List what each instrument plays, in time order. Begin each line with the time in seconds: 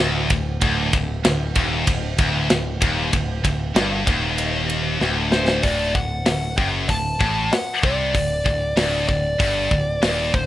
0.00 picked electric bass D1, distorted electric guitar D2
0.30 picked electric bass D1, distorted electric guitar D2, kick, ride
0.61 picked electric bass D1, distorted electric guitar D2, kick, ride
0.93 picked electric bass D1, distorted electric guitar D2, kick, ride
1.24 picked electric bass D1, distorted electric guitar D2, snare, ride
1.55 picked electric bass D#1, distorted electric guitar D#2, kick, ride
1.87 picked electric bass D1, distorted electric guitar D2, kick, ride
2.18 picked electric bass D1, distorted electric guitar D2, kick, ride
2.50 picked electric bass D1, distorted electric guitar D2, snare, ride
2.81 picked electric bass D#1, distorted electric guitar D#2, kick, ride
3.13 picked electric bass D1, distorted electric guitar D2, kick, ride
3.44 picked electric bass D1, distorted electric guitar D2, kick, ride
3.75 picked electric bass G1, distorted electric guitar G2, snare, ride
4.07 picked electric bass D#1, distorted electric guitar D#2, kick, ride
4.38 ride
4.70 ride
5.01 picked electric bass D1, distorted electric guitar D2, snare
5.32 lead electric guitar C5, snare
5.48 snare
5.63 picked electric bass D1, distorted electric guitar D2, lead electric guitar D5, kick, open hi-hat
5.94 picked electric bass D1, distorted electric guitar D2, lead electric guitar F#5, kick
6.26 picked electric bass D1, distorted electric guitar D2, snare, open hi-hat
6.57 picked electric bass F#1, distorted electric guitar F#2, lead electric guitar G5, kick
6.89 picked electric bass D1, distorted electric guitar D2, lead electric guitar A5, kick, open hi-hat
7.20 picked electric bass A1, distorted electric guitar A2, kick
7.52 lead electric guitar F#5, snare, open hi-hat
7.83 picked electric bass C2, distorted electric guitar C3, lead electric guitar D5, kick
8.14 picked electric bass D1, distorted electric guitar D2, kick, open hi-hat
8.46 picked electric bass D1, distorted electric guitar D2, kick
8.76 picked electric bass D1, distorted electric guitar D2, lead electric guitar D5, snare, open hi-hat
9.08 picked electric bass D1, distorted electric guitar D2, lead electric guitar D5, kick
9.40 picked electric bass G1, distorted electric guitar G2, kick, open hi-hat
9.71 picked electric bass D1, distorted electric guitar D2, kick
10.02 picked electric bass D#1, distorted electric guitar D#2, snare, open hi-hat
10.34 picked electric bass D1, distorted electric guitar D2, lead electric guitar C5, kick